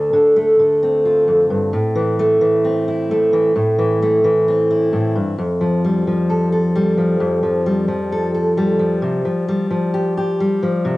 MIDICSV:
0, 0, Header, 1, 2, 480
1, 0, Start_track
1, 0, Tempo, 455927
1, 1819, Time_signature, 4, 2, 24, 8
1, 11552, End_track
2, 0, Start_track
2, 0, Title_t, "Steel-string acoustic guitar"
2, 0, Program_c, 0, 25
2, 0, Note_on_c, 0, 38, 65
2, 0, Note_on_c, 0, 50, 61
2, 0, Note_on_c, 0, 57, 50
2, 126, Note_off_c, 0, 50, 0
2, 139, Note_on_c, 0, 50, 63
2, 378, Note_off_c, 0, 57, 0
2, 382, Note_on_c, 0, 57, 53
2, 613, Note_off_c, 0, 50, 0
2, 626, Note_on_c, 0, 50, 56
2, 872, Note_on_c, 0, 60, 50
2, 1109, Note_on_c, 0, 65, 48
2, 1340, Note_off_c, 0, 38, 0
2, 1345, Note_on_c, 0, 41, 56
2, 1577, Note_off_c, 0, 41, 0
2, 1582, Note_on_c, 0, 43, 58
2, 1796, Note_off_c, 0, 65, 0
2, 1821, Note_off_c, 0, 43, 0
2, 1822, Note_on_c, 0, 45, 70
2, 1824, Note_off_c, 0, 50, 0
2, 2058, Note_on_c, 0, 52, 61
2, 2304, Note_off_c, 0, 57, 0
2, 2309, Note_on_c, 0, 57, 58
2, 2534, Note_off_c, 0, 52, 0
2, 2538, Note_on_c, 0, 52, 58
2, 2780, Note_off_c, 0, 60, 0
2, 2785, Note_on_c, 0, 60, 50
2, 3032, Note_on_c, 0, 64, 50
2, 3269, Note_off_c, 0, 57, 0
2, 3273, Note_on_c, 0, 57, 54
2, 3492, Note_off_c, 0, 52, 0
2, 3504, Note_on_c, 0, 52, 61
2, 3714, Note_off_c, 0, 52, 0
2, 3733, Note_off_c, 0, 45, 0
2, 3745, Note_on_c, 0, 45, 70
2, 3985, Note_on_c, 0, 52, 59
2, 4234, Note_off_c, 0, 57, 0
2, 4238, Note_on_c, 0, 57, 52
2, 4454, Note_off_c, 0, 52, 0
2, 4467, Note_on_c, 0, 52, 58
2, 4713, Note_off_c, 0, 60, 0
2, 4717, Note_on_c, 0, 60, 55
2, 4941, Note_off_c, 0, 64, 0
2, 4954, Note_on_c, 0, 64, 46
2, 5176, Note_off_c, 0, 45, 0
2, 5189, Note_on_c, 0, 45, 57
2, 5425, Note_off_c, 0, 45, 0
2, 5428, Note_on_c, 0, 43, 60
2, 5635, Note_off_c, 0, 52, 0
2, 5664, Note_off_c, 0, 43, 0
2, 5668, Note_off_c, 0, 64, 0
2, 5669, Note_on_c, 0, 41, 72
2, 5903, Note_on_c, 0, 53, 59
2, 6150, Note_off_c, 0, 57, 0
2, 6154, Note_on_c, 0, 55, 47
2, 6389, Note_off_c, 0, 53, 0
2, 6393, Note_on_c, 0, 53, 53
2, 6629, Note_on_c, 0, 69, 58
2, 6855, Note_off_c, 0, 69, 0
2, 6867, Note_on_c, 0, 69, 51
2, 7107, Note_off_c, 0, 55, 0
2, 7112, Note_on_c, 0, 55, 54
2, 7340, Note_off_c, 0, 53, 0
2, 7344, Note_on_c, 0, 53, 58
2, 7554, Note_off_c, 0, 69, 0
2, 7555, Note_off_c, 0, 41, 0
2, 7582, Note_on_c, 0, 41, 69
2, 7816, Note_off_c, 0, 53, 0
2, 7820, Note_on_c, 0, 53, 58
2, 8062, Note_off_c, 0, 55, 0
2, 8066, Note_on_c, 0, 55, 53
2, 8292, Note_off_c, 0, 53, 0
2, 8297, Note_on_c, 0, 53, 56
2, 8402, Note_off_c, 0, 60, 0
2, 8550, Note_on_c, 0, 69, 56
2, 8772, Note_off_c, 0, 69, 0
2, 8784, Note_on_c, 0, 69, 51
2, 9022, Note_off_c, 0, 55, 0
2, 9026, Note_on_c, 0, 55, 58
2, 9252, Note_off_c, 0, 53, 0
2, 9256, Note_on_c, 0, 53, 65
2, 9470, Note_off_c, 0, 41, 0
2, 9472, Note_off_c, 0, 69, 0
2, 9497, Note_on_c, 0, 48, 66
2, 9733, Note_off_c, 0, 53, 0
2, 9737, Note_off_c, 0, 48, 0
2, 9737, Note_on_c, 0, 53, 62
2, 9980, Note_off_c, 0, 55, 0
2, 9985, Note_on_c, 0, 55, 54
2, 10214, Note_off_c, 0, 53, 0
2, 10218, Note_on_c, 0, 53, 55
2, 10463, Note_on_c, 0, 67, 57
2, 10700, Note_off_c, 0, 67, 0
2, 10712, Note_on_c, 0, 67, 51
2, 10940, Note_off_c, 0, 55, 0
2, 10953, Note_on_c, 0, 55, 55
2, 11184, Note_off_c, 0, 53, 0
2, 11188, Note_on_c, 0, 53, 62
2, 11395, Note_off_c, 0, 67, 0
2, 11421, Note_on_c, 0, 48, 69
2, 11552, Note_off_c, 0, 48, 0
2, 11552, Note_off_c, 0, 53, 0
2, 11552, Note_off_c, 0, 55, 0
2, 11552, End_track
0, 0, End_of_file